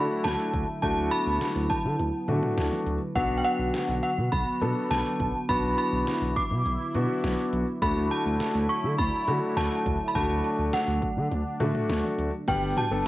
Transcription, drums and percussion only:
0.24 snare loud
0.24 closed hi-hat medium
0.54 kick medium
0.54 closed hi-hat medium
0.83 kick loud
0.83 closed hi-hat medium
1.12 closed hi-hat medium
1.41 snare loud
1.41 closed hi-hat medium
1.70 kick medium
1.70 closed hi-hat medium
2.00 closed hi-hat medium
2.28 closed hi-hat medium
2.28 mid tom medium
2.43 mid tom medium
2.58 snare loud
2.58 closed hi-hat medium
2.72 mid tom medium
2.87 closed hi-hat medium
3.16 kick loud
3.16 closed hi-hat medium
3.45 closed hi-hat medium
3.74 snare loud
3.74 closed hi-hat medium
4.03 closed hi-hat medium
4.32 kick medium
4.32 closed hi-hat medium
4.61 closed hi-hat medium
4.91 snare loud
4.91 closed hi-hat medium
5.20 kick medium
5.20 closed hi-hat medium
5.49 kick loud
5.49 closed hi-hat medium
5.78 closed hi-hat medium
6.07 snare loud
6.07 closed hi-hat medium
6.36 kick medium
6.36 closed hi-hat medium
6.66 closed hi-hat medium
6.95 closed hi-hat medium
7.24 snare loud
7.24 closed hi-hat medium
7.53 closed hi-hat medium
7.82 kick loud
7.82 closed hi-hat medium
8.11 closed hi-hat medium
8.40 snare loud
8.40 closed hi-hat medium
8.69 closed hi-hat medium
8.99 kick medium
8.99 closed hi-hat medium
9.28 closed hi-hat medium
9.57 snare loud
9.57 closed hi-hat medium
9.86 kick medium
9.86 closed hi-hat medium
10.15 kick loud
10.15 closed hi-hat medium
10.44 closed hi-hat medium
10.73 snare loud
10.73 closed hi-hat medium
11.02 kick medium
11.02 closed hi-hat medium
11.32 closed hi-hat medium
11.60 closed hi-hat medium
11.60 mid tom medium
11.75 mid tom medium
11.90 snare loud
11.90 closed hi-hat medium
12.04 mid tom medium
12.19 closed hi-hat medium
12.48 kick loud
12.48 closed hi-hat medium
12.48 crash medium
12.77 closed hi-hat medium
12.77 mid tom medium

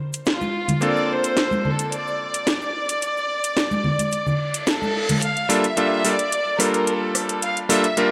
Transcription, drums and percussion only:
0.13 closed hi-hat medium
0.13 cabasa medium
0.26 snare loud
0.26 closed hi-hat soft
0.26 cabasa medium
0.41 high conga soft
0.41 cabasa soft
0.68 closed hi-hat medium
0.68 high conga medium
0.68 low conga medium
0.68 cabasa medium
0.81 closed hi-hat soft
0.81 cabasa medium
0.97 cabasa soft
1.24 closed hi-hat medium
1.24 cabasa medium
1.37 snare loud
1.37 closed hi-hat soft
1.37 cabasa medium
1.51 high conga medium
1.51 cabasa soft
1.65 low conga medium
1.79 closed hi-hat medium
1.79 cabasa medium
1.92 closed hi-hat soft
1.92 cabasa medium
2.07 cabasa soft
2.34 closed hi-hat medium
2.34 cabasa medium
2.47 snare loud
2.47 closed hi-hat soft
2.47 cabasa medium
2.62 cabasa soft
2.89 closed hi-hat medium
2.89 cabasa medium
3.02 closed hi-hat soft
3.02 cabasa medium
3.17 cabasa soft
3.44 closed hi-hat medium
3.44 cabasa medium
3.57 snare loud
3.57 closed hi-hat soft
3.57 cabasa medium
3.71 high conga medium
3.71 cabasa soft
3.84 low conga medium
3.99 closed hi-hat medium
3.99 high conga medium
3.99 cabasa medium
4.11 closed hi-hat medium
4.11 cabasa medium
4.26 low conga medium
4.26 cabasa soft
4.54 closed hi-hat medium
4.54 cabasa medium
4.67 snare loud
4.67 closed hi-hat soft
4.67 cabasa medium
4.82 high conga medium
4.82 cabasa soft
5.09 closed hi-hat medium
5.09 high conga medium
5.09 low conga medium
5.09 cabasa medium
5.22 closed hi-hat medium
5.37 closed hi-hat soft
5.50 open hi-hat loud
5.64 closed hi-hat medium
5.77 closed hi-hat medium
6.05 open hi-hat medium
6.19 closed hi-hat medium
6.32 closed hi-hat medium
6.60 cross-stick medium
6.60 open hi-hat loud
6.74 closed hi-hat soft
6.87 closed hi-hat medium
7.15 cross-stick medium
7.15 open hi-hat medium
7.29 closed hi-hat medium
7.42 closed hi-hat medium
7.57 closed hi-hat soft
7.70 open hi-hat loud
7.84 closed hi-hat medium
7.97 closed hi-hat medium

